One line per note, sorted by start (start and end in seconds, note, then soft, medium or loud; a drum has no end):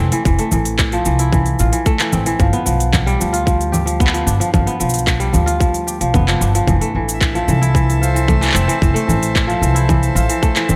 0.00 0.11 E3 medium
0.00 0.92 F3 medium
0.00 0.39 A3 loud
0.00 1.79 C4 medium
0.12 0.25 E3 loud
0.12 open hi-hat medium
0.12 cabasa soft
0.25 0.35 F1 medium
0.25 0.51 E3 medium
0.25 kick loud
0.25 cabasa soft
0.39 1.86 A3 loud
0.39 open hi-hat soft
0.52 1.00 A1 medium
0.52 1.04 E3 medium
0.52 low conga medium
0.52 cabasa medium
0.65 open hi-hat medium
0.65 cabasa soft
0.79 kick loud
0.79 clap medium
0.79 cabasa soft
0.92 2.39 F3 loud
0.92 open hi-hat soft
1.05 1.60 C2 medium
1.05 1.32 E3 medium
1.05 cabasa medium
1.19 1.66 E4 loud
1.19 open hi-hat medium
1.19 cabasa soft
1.32 1.71 E3 medium
1.32 kick loud
1.32 low conga medium
1.32 cabasa soft
1.46 open hi-hat soft
1.46 cabasa soft
1.59 1.69 A1 loud
1.59 1.78 F4 medium
1.59 cabasa medium
1.72 1.99 E3 medium
1.72 open hi-hat medium
1.72 cabasa soft
1.86 3.86 A3 loud
1.86 kick loud
1.86 cabasa soft
2.00 2.25 E3 medium
2.00 clap medium
2.00 open hi-hat soft
2.13 2.32 A1 medium
2.13 2.59 C4 medium
2.13 low conga medium
2.13 cabasa medium
2.26 2.45 E3 loud
2.26 open hi-hat medium
2.26 cabasa soft
2.40 2.49 G1 loud
2.40 2.64 F3 medium
2.40 kick loud
2.40 cabasa soft
2.53 4.00 B3 loud
2.53 open hi-hat soft
2.66 3.14 B1 medium
2.66 3.19 F3 medium
2.66 cabasa medium
2.80 open hi-hat soft
2.80 cabasa soft
2.93 kick loud
2.93 clap medium
2.93 low conga medium
2.93 cabasa medium
3.06 5.18 G3 loud
3.06 open hi-hat soft
3.20 4.21 D2 medium
3.20 3.44 F3 medium
3.20 cabasa medium
3.33 4.84 F4 loud
3.33 open hi-hat medium
3.33 cabasa soft
3.45 3.85 F3 medium
3.45 kick loud
3.45 cabasa soft
3.61 open hi-hat soft
3.61 cabasa soft
3.72 5.13 G4 medium
3.72 low conga medium
3.72 cabasa medium
3.86 4.12 F3 medium
3.86 open hi-hat medium
3.86 cabasa soft
4.00 4.66 B3 loud
4.00 kick loud
4.00 cabasa medium
4.07 clap medium
4.13 4.39 F3 medium
4.13 open hi-hat soft
4.27 4.36 G1 medium
4.27 5.95 D4 medium
4.27 cabasa medium
4.40 4.52 F3 loud
4.40 open hi-hat medium
4.40 cabasa soft
4.53 4.63 G1 medium
4.53 4.79 F3 medium
4.53 kick loud
4.53 low conga medium
4.53 cabasa soft
4.67 6.14 B3 loud
4.67 open hi-hat soft
4.80 5.28 B1 medium
4.80 5.31 F3 medium
4.80 cabasa medium
4.89 cabasa medium
4.94 open hi-hat soft
4.94 cabasa soft
4.99 cabasa medium
5.07 kick loud
5.07 clap medium
5.07 cabasa soft
5.20 6.73 G3 loud
5.20 open hi-hat soft
5.20 cabasa soft
5.33 6.00 D2 medium
5.33 5.59 F3 medium
5.33 low conga medium
5.33 cabasa medium
5.46 6.74 F4 loud
5.46 open hi-hat soft
5.46 cabasa soft
5.60 6.00 F3 medium
5.60 kick loud
5.60 cabasa soft
5.74 open hi-hat soft
5.74 cabasa soft
5.87 7.28 G4 medium
5.87 cabasa medium
6.01 6.11 B1 medium
6.01 6.27 F3 medium
6.01 open hi-hat soft
6.01 cabasa soft
6.14 6.33 F1 medium
6.14 8.00 B3 loud
6.14 kick loud
6.14 low conga medium
6.14 cabasa soft
6.28 6.54 F3 medium
6.28 clap medium
6.28 open hi-hat soft
6.41 6.60 G1 medium
6.41 8.09 D4 medium
6.41 cabasa medium
6.55 6.73 F3 loud
6.55 open hi-hat medium
6.55 cabasa soft
6.67 6.77 F1 medium
6.67 6.94 E3 medium
6.67 kick loud
6.67 low conga medium
6.67 cabasa soft
6.81 8.27 A3 loud
6.81 open hi-hat soft
6.95 7.42 A1 medium
6.95 7.47 E3 medium
7.09 open hi-hat soft
7.09 cabasa medium
7.14 10.76 E5 medium
7.21 kick loud
7.21 clap medium
7.21 cabasa soft
7.35 9.46 F3 loud
7.35 open hi-hat soft
7.48 8.49 C2 loud
7.48 7.73 E3 medium
7.48 10.76 A4 medium
7.48 low conga medium
7.48 cabasa medium
7.61 8.07 E4 loud
7.61 open hi-hat medium
7.61 cabasa soft
7.75 8.13 E3 medium
7.75 kick loud
7.75 cabasa soft
7.90 open hi-hat soft
7.90 cabasa soft
8.01 8.20 F4 medium
8.01 10.76 C5 medium
8.01 cabasa medium
8.14 8.40 E3 medium
8.14 open hi-hat medium
8.14 cabasa soft
8.28 8.94 A3 loud
8.28 kick loud
8.28 low conga medium
8.28 cabasa soft
8.41 8.67 E3 medium
8.41 clap soft
8.41 open hi-hat soft
8.45 clap soft
8.47 clap soft
8.50 clap medium
8.52 clap medium
8.54 8.65 F1 loud
8.54 10.35 C4 medium
8.54 clap medium
8.54 cabasa medium
8.68 8.80 E3 loud
8.68 open hi-hat soft
8.68 cabasa soft
8.81 8.92 F1 medium
8.81 9.06 E3 medium
8.81 kick loud
8.81 cabasa soft
8.94 10.42 A3 loud
8.94 open hi-hat soft
9.07 9.56 A1 medium
9.07 9.60 E3 medium
9.07 low conga medium
9.07 cabasa medium
9.23 open hi-hat medium
9.23 cabasa soft
9.35 kick medium
9.35 clap medium
9.35 cabasa soft
9.47 10.76 F3 loud
9.47 open hi-hat soft
9.61 10.15 C2 medium
9.61 9.87 E3 medium
9.61 cabasa medium
9.74 10.21 E4 loud
9.74 open hi-hat medium
9.74 cabasa soft
9.89 10.28 E3 medium
9.89 kick loud
9.89 low conga medium
9.89 cabasa soft
10.03 open hi-hat soft
10.03 cabasa soft
10.15 10.25 A1 medium
10.15 10.35 F4 medium
10.15 cabasa medium
10.29 10.55 E3 medium
10.29 open hi-hat medium
10.29 cabasa soft
10.42 10.76 A3 loud
10.42 kick loud
10.42 cabasa soft
10.56 10.76 E3 medium
10.56 clap medium
10.56 open hi-hat soft
10.69 10.76 A1 medium
10.69 10.76 C4 medium
10.69 low conga medium
10.69 cabasa medium